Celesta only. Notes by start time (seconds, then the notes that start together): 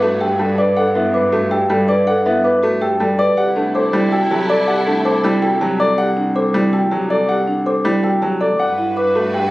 0.21 G5
0.39 A5
0.58 D6
0.96 E5
1.14 D6
1.51 G5
1.70 A5
1.89 D6
2.26 E5
2.44 D6
2.82 G5
3.01 A5
3.19 D6
3.75 D6
4.12 G5
4.31 A5
4.50 D6
5.06 D6
5.42 G5
5.61 A5
5.80 D6
6.36 D6
6.73 G5
6.92 A5
7.10 D6
7.67 D6
8.04 G5
8.22 A5
8.41 D6
8.97 D6
9.34 G5